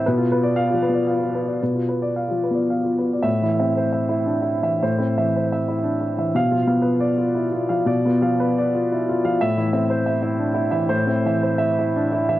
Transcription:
<<
  \new Staff \with { instrumentName = "Grand piano" } { \time 3/4 \key a \minor \tempo 4 = 117 << { r4 f''8 r4. | r2. | e''8 r2 r8 | r2. |
f''8 r2 r8 | r2. | e''8 r2 r8 | r2. | } \\ { b'16 f'16 b'16 d''8 f'16 b'16 d''16 f''16 f'16 b'16 d''16 | b'16 f'16 b'16 d''16 f''16 f'16 b'16 d''16 f''16 f'16 b'16 d''16 | \tuplet 3/2 { r8 e'8 e''8 c''8 e''8 e'8 d'8 e'8 e''8 } | \tuplet 3/2 { c''8 e'8 e''8 c''8 e''8 e'8 d'8 e'8 e''8 } |
\tuplet 3/2 { r8 f'8 f''8 b'8 d''8 f'8 e'8 f'8 f''8 } | \tuplet 3/2 { d''8 f'8 f''8 b'8 d''8 f'8 e'8 f'8 f''8 } | \tuplet 3/2 { r8 e'8 e''8 c''8 e''8 e'8 d'8 e'8 e''8 } | \tuplet 3/2 { c''8 e'8 e''8 c''8 e''8 e'8 d'8 e'8 e''8 } | } >> }
  \new Staff \with { instrumentName = "Grand piano" } { \clef bass \time 3/4 \key a \minor b,4~ \tuplet 3/2 { b,8 f8 b8 } r4 | b,4~ \tuplet 3/2 { b,8 f8 b8 } r4 | \tuplet 3/2 { a,8 e8 c'8 } r4 \tuplet 3/2 { r4 e8 } | \tuplet 3/2 { a,8 c'8 e8 } r4 \tuplet 3/2 { r4 e8 } |
\tuplet 3/2 { b,8 f8 b8 } r4 \tuplet 3/2 { r4 f8 } | \tuplet 3/2 { b,8 b8 f8 } r4 \tuplet 3/2 { r4 f8 } | \tuplet 3/2 { a,8 e8 c'8 } r4 \tuplet 3/2 { r4 e8 } | \tuplet 3/2 { a,8 c'8 e8 } r4 \tuplet 3/2 { r4 e8 } | }
>>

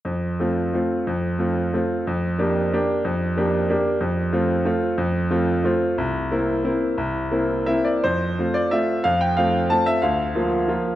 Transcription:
\new Staff \with { instrumentName = "Grand piano" } { \time 3/4 \key f \major \tempo 4 = 181 << { r2. | r2. | r2. | r2. |
r2. | r2. | r2. | r2 e''8 d''8 |
c''4. d''8 e''4 | f''8 g''8 f''4 a''8 e''8 | f''2. | } \\ { f,4 <a c' f'>4 <a c' f'>4 | f,4 <a c' f'>4 <a c' f'>4 | f,4 <bes d' g'>4 <bes d' g'>4 | f,4 <bes d' g'>4 <bes d' g'>4 |
f,4 <a c' f'>4 <a c' f'>4 | f,4 <a c' f'>4 <a c' f'>4 | c,4 <bes c' e'>4 <bes c' e'>4 | c,4 <bes c' e'>4 <bes c' e'>4 |
f,4 <a c' f'>4 <a c' f'>4 | f,4 <a c' f'>4 <a c' f'>4 | d,4 <f bes f'>4 <f bes f'>4 | } >> }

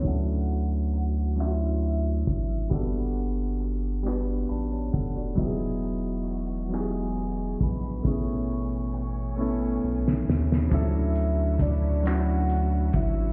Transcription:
<<
  \new Staff \with { instrumentName = "Soft synth lead" } { \time 6/8 \key d \major \tempo 4. = 45 fis''4. e''4. | fis''4 r2 | r4. gis''4 b''8 | cis'''2~ cis'''8 r8 |
e''4 d''8 fis''4 e''8 | }
  \new Staff \with { instrumentName = "Grand piano" } { \time 6/8 \key d \major << { r2. | r2 <d'' a'' b''>16 <cis'' a''>16 <a' fis''>16 <fis' d''>16~ | <fis' d''>16 r2 r8. | r2. |
r2. | } \\ { <fis cis' d' e' a'>4 r8 <fis cis' d' e' f' fis'>4 r8 | <g bes b d' fis' a'>4 r8 <g b d' fis' b'>4 r8 | <fis b dis' e' g' gis'>4 r8 <fis b dis' e' g' gis'>4 r8 | <a b cis' e' gis'>4 r8 <a b cis' e' a'>4 r8 |
<f fis cis' d' e' a'>4 r8 <fis cis' d' e' fis'>4 r8 | } >> }
  \new Staff \with { instrumentName = "String section" } { \time 6/8 \key d \major r2. | r2. | <e gis fis' dis''>2. | <b, a cis' gis''>2. |
<d a e' fis'>2. | }
  \new Staff \with { instrumentName = "Analog synth bass" } { \clef bass \time 6/8 \key d \major d,2~ d,8 gis,,8 | g,,2 a,,8 f,,8 | e,,2~ e,,8 bes,,8 | a,,2 b,,8 ees,8 |
d,2~ d,8 gis,,8 | }
  \new DrumStaff \with { instrumentName = "Drums" } \drummode { \time 6/8 <hh bd>8 hh8 hh8 <hc hh>8 hh8 <hh bd>8 | <hh bd>8 hh8 hh8 <hc hh>8 hh8 <hh bd>8 | <hh bd>8 hh8 hh8 <hc hh>8 hh8 <hh bd>8 | <hh bd>8 hh8 hh8 r8. sn16 sn16 sn16 |
<hh bd>8 hh8 <hh bd>8 <hc hh>8 hh8 <hh bd>8 | }
>>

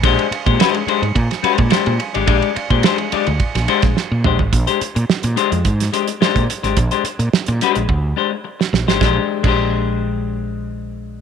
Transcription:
<<
  \new Staff \with { instrumentName = "Clean electric guitar" } { \time 4/4 \key bes \mixolydian \tempo 4 = 107 <aes d' g' c''>8 r16 <aes d' g' c''>16 <aes d' g' c''>8 <aes d' g' c''>16 r8. <aes d' g' c''>8 <aes d' g' c''>8 r16 <aes d' g' d''>16 | <aes d' g' d''>8 r16 <aes d' g' c''>16 <aes d' g' c''>8 <aes d' g' d''>16 r8. <aes d' g' c''>8 r8 <aes d' g' c''>16 r16 | r16 <aes d' g' c''>8 r8. <aes d' g' c''>8 r8 <aes d' g' c''>16 r16 <aes d' g' c''>8 r16 <aes d' g' c''>16 | r16 <aes d' g' c''>8 r8. <aes d' g' c''>8 r8 <aes d' g' c''>16 r4 <aes d' g' c''>16 |
<aes d' g' c''>16 r8 <aes d' g' c''>2.~ <aes d' g' c''>16 | }
  \new Staff \with { instrumentName = "Fretless electric bass" } { \clef bass \time 4/4 \key bes \mixolydian bes,,16 r8 bes,16 r8. aes,16 bes,16 r8 bes,16 r16 bes,16 r16 aes,,16 | bes,,16 r8 bes,16 r8. d,16 r16 bes,,16 r16 bes,,16 r16 bes,16 bes,,16 aes,,16 | bes,,16 r8 bes,16 r16 bes,16 r16 f,16 aes,8 r8. bes,16 r16 aes,,16 | bes,,16 r8 bes,16 r16 bes,16 r16 bes,,16 d,8 r4 bes,,16 aes,,16 |
bes,,16 r8 bes,,2.~ bes,,16 | }
  \new DrumStaff \with { instrumentName = "Drums" } \drummode { \time 4/4 <bd rb>16 rb16 rb16 <bd rb>16 <rb sn>16 rb16 rb16 rb16 <bd rb>16 <rb sn>16 rb16 <bd rb>16 <rb sn>16 rb16 rb16 rb16 | <bd rb>16 rb16 rb16 <bd rb>16 <rb sn>16 rb16 rb16 rb16 <bd rb>16 <rb sn>16 rb16 <bd rb sn>16 sn8 toml16 tomfh16 | <hh bd>16 hh16 hh16 hh16 sn16 hh16 hh16 hh16 <hh bd>16 <hh sn>16 hh16 hh16 sn16 <hh bd>16 hh16 hh16 | <hh bd>16 hh16 hh16 hh16 sn16 hh16 hh16 hh16 bd4 r16 sn16 sn16 sn16 |
<bd sn>8. <cymc bd>16 r4 r4 r4 | }
>>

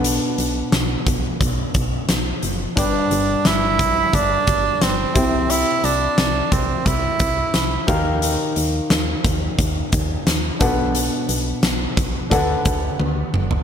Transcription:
<<
  \new Staff \with { instrumentName = "Grand piano" } { \time 4/4 \key b \phrygian \tempo 4 = 88 <d' a' b' fis''>2.~ <d' a' b' fis''>8 r8 | <d' g' b' g''>2.~ <d' g' b' g''>8 <e' g' c'' g''>8~ | <e' g' c'' g''>2.~ <e' g' c'' g''>8 <ees' g' bes' f''>8~ | <ees' g' bes' f''>2.~ <ees' g' bes' f''>8 <d' a' b' fis''>8~ |
<d' a' b' fis''>2 <d' a' b' fis''>2 | }
  \new Staff \with { instrumentName = "Grand piano" } { \clef bass \time 4/4 \key b \phrygian b,4 r2. | g,4. r2 c8~ | c4 r2 r8 ees8~ | ees4 r2 r8 b,8~ |
b,4 r4 d4. r8 | }
  \new Staff \with { instrumentName = "Tenor saxophone" } { \time 4/4 \key b \phrygian r1 | d'4 e'4 d'4 c'4 | e'8 d'4 c'8 e'4. r8 | r1 |
r1 | }
  \new Staff \with { instrumentName = "FM bass" } { \clef bass \time 4/4 \key b \phrygian b,,8 b,,8 b,,8 b,,8 b,,8 b,,8 b,,8 fis,,8 | g,,8 g,,8 g,,8 b,,8 g,,8 g,,8 g,,8 c,8~ | c,8 c,8 c,8 c,8 c,8 c,8 c,8 ees,8~ | ees,8 ees,8 ees,8 ees,8 ees,8 ees,8 ees,8 b,,8~ |
b,,8 b,,8 b,,8 b,,8 d,8 d,8 d,8 fis,,8 | }
  \new DrumStaff \with { instrumentName = "Drums" } \drummode { \time 4/4 hh8 hh8 <hh sn>8 <hh bd>8 <hh bd>8 <hh bd>8 <hh sn>8 hh8 | <hh bd>8 hh8 <hh sn>8 <hh bd>8 <hh bd>8 <hh bd>8 <hh sn>8 <hh bd>8 | hh8 hh8 <hh sn>8 <hh bd>8 <hh bd>8 <hh bd>8 <hh sn>8 <hh bd>8 | hh8 hh8 <hh sn>8 <hh bd>8 <hh bd>8 <hh bd>8 <hh sn>8 <hh bd>8 |
hh8 hh8 <hh sn>8 <hh bd>8 <hh bd>8 <hh bd>8 tommh8 toml16 tomfh16 | }
>>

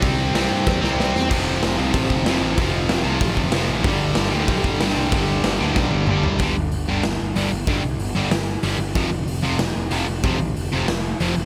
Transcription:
<<
  \new Staff \with { instrumentName = "Distorted electric guitar" } { \clef bass \time 4/4 \key g \mixolydian \tempo 4 = 188 <c g c'>4 <c g c'>4. <c g c'>4 r8 | <f, c f>4. <f, c f>4. <f, c f>4 | <f, c f>4. <f, c f>4. <f, c f>4 | <g, d g>4. <g, d g>4. <g, d g>4 |
<g, d g>4. <g, d g>4. <g, d g>4 | <g, d g>8 r4 <g, d g>8 r4 <g, d g>8 r8 | <g, d g>8 r4 <g, d g>8 r4 <g, d g>8 r8 | <f, c f>8 r4 <f, c f>8 r4 <f, c f>8 r8 |
<f, c f>8 r4 <f, c f>8 r4 <f, c f>8 r8 | }
  \new Staff \with { instrumentName = "Picked electric bass" } { \clef bass \time 4/4 \key g \mixolydian c,4 c,8 g,8 e,8 c,8 c,8 e,8 | f,,4 f,,8 c,8 a,,8 f,,8 f,,8 a,,8 | f,,4 f,,8 c,8 a,,8 f,,8 f,,8 a,,8 | g,,4 g,,8 d,8 b,,8 g,,8 g,,8 c,8 |
g,,4 g,,8 d,8 b,,8 g,,8 g,,8 c,8 | g,,8 g,,8 g,,8 g,,8 g,,8 g,,8 g,,8 g,,8 | g,,8 c,8 g,,8 g,,8 g,,4 g,,8 g,,8 | f,,8 f,,8 f,,8 f,,8 f,,8 f,,8 f,,8 f,,8 |
f,,8 a,,8 f,,8 f,,8 f,,4 f,,8 f,,8 | }
  \new DrumStaff \with { instrumentName = "Drums" } \drummode { \time 4/4 <hho bd>4 <hho sn>4 <bd sn>8 sn8 sn8 sn8 | <cymc hho bd>4 <hho sn>4 <hho bd>8 bd8 <hho sn>4 | <hho bd>4 <hho sn>4 <hho bd>8 bd8 <hho sn>4 | <hho bd>4 <hho sn>4 <hho bd>8 bd8 <hho sn>4 |
<hho bd>4 <hho sn>4 <bd sn>8 tommh8 toml8 tomfh8 | <hho bd>4 hho4 <hho sn>4 hho4 | <hho bd>4 hho4 <hho sn>4 hho4 | <hho bd>4 hho4 <hho sn>4 hho4 |
<hho bd>4 hho4 <hho sn>4 hho4 | }
>>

